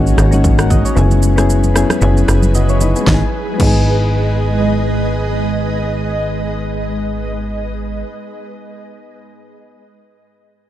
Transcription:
0.00 0.14 G#1 loud
0.00 0.94 G#3 medium
0.00 0.31 A#3 medium
0.00 0.32 C#4 medium
0.00 0.94 C#4 medium
0.00 0.33 D#4 medium
0.00 0.34 F#4 medium
0.00 0.94 F#4 medium
0.00 0.98 G#4 medium
0.07 shaker medium
0.18 0.84 G#1 loud
0.18 cross-stick medium
0.18 shaker medium
0.31 0.63 A#3 medium
0.31 0.63 C#4 medium
0.31 0.64 D#4 medium
0.31 0.45 F#4 medium
0.31 high conga medium
0.31 shaker medium
0.44 kick loud
0.44 low conga medium
0.44 shaker medium
0.59 0.70 A#4 medium
0.59 0.70 F#5 medium
0.59 cross-stick medium
0.59 shaker soft
0.70 0.84 F#4 medium
0.70 0.84 D#5 medium
0.70 kick medium
0.70 low conga medium
0.70 shaker loud
0.85 1.10 C#5 medium
0.85 shaker medium
0.95 1.85 F#1 loud
0.95 3.05 F#3 medium
0.95 1.28 B3 medium
0.95 1.29 C#4 medium
0.95 3.05 E4 medium
0.95 1.29 E4 medium
0.95 3.05 G#4 medium
0.95 1.30 G#4 medium
0.95 3.05 B4 medium
0.95 low conga medium
0.95 shaker medium
1.11 high conga medium
1.11 shaker soft
1.23 shaker medium
1.36 1.68 B3 medium
1.36 1.68 C#4 medium
1.36 1.69 E4 medium
1.36 1.69 G#4 medium
1.36 cross-stick medium
1.36 high conga medium
1.36 shaker medium
1.50 shaker medium
1.64 high conga medium
1.64 shaker medium
1.74 1.96 B3 medium
1.74 1.97 C#4 medium
1.74 1.97 E4 medium
1.74 1.98 G#4 medium
1.74 cross-stick medium
1.74 shaker medium
1.90 cross-stick medium
1.90 high conga medium
1.90 shaker soft
2.01 2.24 F#1 loud
2.01 2.28 B3 medium
2.01 2.28 C#4 medium
2.01 2.29 E4 medium
2.01 2.29 G#4 medium
2.01 low conga medium
2.01 shaker medium
2.17 shaker soft
2.28 2.94 F#1 loud
2.28 cross-stick medium
2.28 shaker medium
2.43 high conga medium
2.43 shaker medium
2.54 2.69 F#4 medium
2.54 2.68 D#5 medium
2.54 low conga medium
2.54 shaker medium
2.69 2.81 E4 medium
2.69 2.80 C#5 medium
2.69 shaker soft
2.81 2.95 D#4 medium
2.81 2.95 B4 medium
2.81 low conga medium
2.81 shaker loud
2.96 3.04 B3 medium
2.96 3.13 G#4 medium
2.96 shaker medium
3.01 3.19 G#3 medium
3.05 3.23 G#1 medium
3.05 7.78 G#3 medium
3.05 3.22 B3 medium
3.05 7.78 G#4 medium
3.05 7.78 B4 medium
3.05 7.78 D#5 medium
3.05 kick medium
3.05 snare medium
3.05 high conga medium
3.10 3.24 D#4 medium
3.14 3.26 G#4 medium
3.54 8.25 G#3 medium
3.58 8.04 G#1 medium
3.58 8.29 B3 medium
3.58 kick loud
3.58 crash medium
3.58 high conga medium
3.62 8.33 D#4 medium
3.67 8.38 G#4 medium

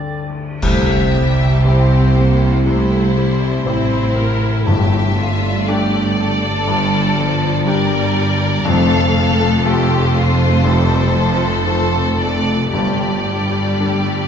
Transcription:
0.00 0.65 D2 soft
0.00 0.67 G2 soft
0.00 0.67 D3 soft
0.00 0.28 A3 soft
0.00 0.58 A3 soft
0.00 0.59 D4 soft
0.00 0.67 D4 soft
0.00 0.26 A4 soft
0.00 0.59 A4 soft
0.00 0.67 A4 soft
0.00 0.26 D5 soft
0.00 0.30 G5 soft
0.29 0.67 A3 soft
0.62 3.63 C2 medium
0.62 2.63 C2 medium
0.62 2.63 C3 soft
0.62 3.64 C3 medium
0.62 4.54 C3 medium
0.62 1.11 A3 medium
0.62 2.62 G4 soft
0.62 1.62 E5 medium
0.62 concert bass drum medium
0.62 crash medium
0.90 2.91 C4 soft
1.14 1.66 G3 medium
1.14 2.16 G4 soft
1.41 1.91 E5 soft
1.65 2.62 C4 soft
1.65 2.17 C4 medium
1.65 2.63 E4 soft
1.65 2.63 G4 soft
1.65 2.66 C5 medium
1.65 3.67 G5 medium
1.92 3.42 E5 soft
2.17 2.67 A#3 medium
2.17 3.16 G4 medium
2.42 4.42 E4 soft
2.66 3.65 C2 soft
2.66 4.63 C3 medium
2.66 6.57 G3 soft
2.66 3.16 A3 medium
2.66 3.66 E4 medium
2.66 4.64 C5 medium
2.93 4.72 C4 soft
3.18 3.68 G3 medium
3.18 4.17 G4 soft
3.43 3.92 E5 medium
3.66 4.67 A1 medium
3.66 4.68 A2 medium
3.66 4.63 C4 soft
3.66 4.18 C4 medium
3.66 4.63 E4 soft
3.66 4.66 E4 medium
3.66 4.63 G4 soft
3.66 5.67 G5 soft
3.94 4.72 E5 soft
4.18 5.16 G4 medium
4.18 4.68 A#4 medium
4.44 4.72 E4 soft
4.66 6.63 G1 soft
4.66 8.62 G1 medium
4.66 6.64 G2 medium
4.66 8.58 G2 medium
4.66 8.62 G2 medium
4.66 6.14 G2 medium
4.66 6.64 A3 medium
4.66 5.18 G4 medium
4.66 5.66 E5 medium
5.18 5.68 F4 medium
5.18 6.17 G4 soft
5.42 5.92 D5 medium
5.68 6.64 A3 soft
5.68 6.65 D4 soft
5.68 6.64 G4 soft
5.68 6.19 G4 medium
5.68 7.64 D5 medium
5.68 7.66 G5 medium
5.93 7.41 D5 medium
6.18 7.17 G4 medium
6.18 7.64 A4 medium
6.43 8.40 D4 medium
6.68 8.62 G1 medium
6.68 8.62 G2 medium
6.68 8.70 D3 medium
6.68 7.16 G3 medium
7.17 7.67 F3 medium
7.17 8.15 G4 medium
7.42 7.91 D5 medium
7.66 8.62 G3 medium
7.66 8.66 G3 medium
7.66 8.62 D4 soft
7.66 8.63 G4 medium
7.66 8.65 A#4 medium
7.66 8.64 D5 medium
7.66 8.70 G5 medium
7.92 8.70 D5 medium
8.16 8.70 G4 medium
8.41 8.70 D4 medium
8.65 10.61 F1 medium
8.65 12.68 F1 medium
8.65 10.61 F2 medium
8.65 12.69 F2 medium
8.65 12.56 F2 medium
8.65 9.63 A3 medium
8.65 9.15 A4 medium
8.65 9.65 F5 medium
8.91 10.91 A3 medium
9.16 10.14 A4 medium
9.16 9.65 A4 medium
9.41 9.89 F5 medium
9.64 10.63 A3 medium
9.64 10.61 A3 medium
9.64 10.62 F4 medium
9.64 10.16 G4 medium
9.64 10.62 A4 medium
9.64 11.64 C5 medium
9.64 11.67 A5 medium
9.91 11.42 F5 medium
10.15 10.66 F4 medium
10.15 11.16 A4 medium
10.40 12.46 F4 medium
10.64 12.68 F1 medium
10.64 12.68 F2 medium
10.64 12.77 C3 medium
10.64 11.17 G3 medium
10.64 12.73 A4 medium
10.92 12.99 A3 medium
11.16 11.68 F3 medium
11.16 12.20 A4 medium
11.43 11.93 F5 medium
11.67 12.68 A3 soft
11.67 12.71 A3 medium
11.67 12.68 F4 soft
11.67 12.69 A4 soft
11.67 12.19 C5 medium
11.67 13.79 A5 medium
11.94 12.77 F5 medium
12.21 13.25 A4 medium
12.21 12.72 D5 medium
12.47 12.77 F4 soft
12.72 14.28 G1 medium
12.72 14.28 G1 soft
12.72 14.28 G2 medium
12.72 14.28 G3 medium
12.72 14.28 G4 medium
12.72 14.28 D5 medium
13.00 14.28 A3 soft
13.26 14.28 A4 soft
13.53 14.05 D5 soft
13.80 14.28 A3 soft
13.80 14.28 D4 soft
13.80 14.28 A4 soft
13.80 14.28 A5 soft
14.06 14.28 D5 soft

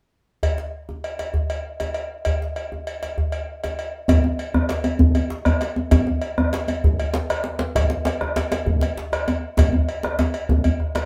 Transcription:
0.43 cowbell soft
0.43 djembe bass medium
0.58 djembe slap soft
0.89 djembe slap soft
0.89 djembe tone soft
1.04 cowbell soft
1.19 cowbell soft
1.19 djembe slap soft
1.34 djembe slap soft
1.34 djembe bass medium
1.50 cowbell soft
1.80 cowbell soft
1.80 djembe slap soft
1.80 djembe tone soft
1.94 cowbell soft
2.25 cowbell soft
2.25 djembe bass medium
2.42 djembe slap soft
2.56 cowbell soft
2.72 djembe slap soft
2.72 djembe tone soft
2.87 cowbell soft
3.03 cowbell soft
3.03 djembe slap soft
3.18 djembe slap soft
3.18 djembe bass medium
3.32 cowbell soft
3.64 cowbell soft
3.64 djembe slap soft
3.64 djembe tone soft
3.79 cowbell soft
4.08 bombo low medium
4.08 cowbell medium
4.08 djembe slap medium
4.08 djembe bass medium
4.24 djembe tone medium
4.39 cowbell soft
4.39 djembe slap soft
4.54 bombo rim medium
4.54 djembe slap soft
4.54 djembe tone medium
4.54 djembe bass medium
4.69 cowbell soft
4.69 djembe slap medium
4.84 cowbell soft
4.84 djembe slap soft
4.84 djembe tone medium
4.99 bombo low medium
4.99 djembe bass loud
4.99 djembe bass medium
5.15 cowbell soft
5.15 djembe tone medium
5.30 djembe slap medium
5.45 bombo rim medium
5.45 cowbell soft
5.45 djembe tone medium
5.45 djembe bass medium
5.61 bombo rim soft
5.61 cowbell soft
5.61 djembe slap medium
5.76 djembe tone medium
5.91 bombo low medium
5.91 cowbell medium
5.91 djembe slap medium
5.91 djembe bass medium
6.07 djembe tone medium
6.22 cowbell soft
6.22 djembe slap soft
6.38 bombo rim medium
6.38 djembe slap soft
6.38 djembe tone medium
6.38 djembe bass medium
6.53 cowbell soft
6.53 djembe slap medium
6.68 cowbell medium
6.68 djembe slap soft
6.68 djembe tone medium
6.84 bombo low medium
6.84 djembe bass medium
7.00 cowbell medium
7.14 djembe slap medium
7.30 bombo rim medium
7.30 cowbell medium
7.30 djembe tone medium
7.44 bombo rim soft
7.44 djembe slap medium
7.59 djembe slap loud
7.75 bombo low medium
7.75 cowbell medium
7.75 djembe slap medium
7.75 djembe bass medium
7.90 djembe slap medium
8.05 cowbell medium
8.05 djembe slap loud
8.07 djembe slap soft
8.21 bombo rim medium
8.21 djembe slap soft
8.21 djembe tone medium
8.36 cowbell medium
8.36 djembe slap medium
8.52 cowbell medium
8.52 djembe slap medium
8.66 bombo low loud
8.66 djembe bass medium
8.81 cowbell soft
8.81 djembe slap medium
8.97 djembe slap medium
9.12 bombo rim medium
9.12 cowbell soft
9.12 djembe tone medium
9.28 bombo rim soft
9.28 cowbell soft
9.28 djembe tone medium
9.57 bombo rim soft
9.57 bombo low loud
9.57 cowbell medium
9.57 djembe slap medium
9.57 djembe tone medium
9.57 djembe bass medium
9.73 bombo rim soft
9.73 djembe slap soft
9.73 djembe bass medium
9.88 cowbell soft
9.88 djembe slap soft
10.03 bombo rim medium
10.03 djembe slap medium
10.03 djembe tone medium
10.19 cowbell soft
10.19 djembe slap medium
10.19 djembe tone medium
10.34 bombo rim soft
10.34 cowbell soft
10.49 bombo rim soft
10.49 bombo low loud
10.49 djembe tone medium
10.49 djembe bass medium
10.64 cowbell soft
10.64 djembe slap soft
10.64 djembe bass medium
10.80 bombo rim soft
10.80 djembe bass soft
10.95 bombo rim medium
10.95 cowbell soft
10.95 djembe slap medium
10.95 djembe bass soft

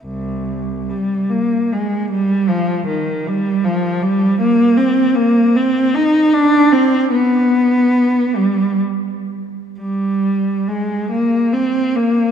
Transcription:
0.04 0.90 C2 soft
0.89 1.30 G3 soft
1.30 1.69 A#3 soft
1.73 2.11 G#3 soft
2.11 2.49 G3 medium
2.49 2.88 F3 medium
2.87 3.25 D#3 soft
3.27 3.65 G3 medium
3.64 4.02 F3 medium
4.03 4.40 G3 medium
4.41 4.76 A#3 medium
4.77 5.15 C4 medium
5.16 5.54 A#3 medium
5.56 5.94 C4 medium
5.95 6.34 D#4 medium
6.34 6.73 D4 medium
6.72 7.11 C4 medium
7.12 8.33 B3 medium
8.35 8.80 G3 medium
9.81 10.64 G3 medium
10.68 11.11 G#3 medium
11.11 11.53 A#3 medium
11.53 11.95 C4 medium
11.96 12.31 A#3 medium

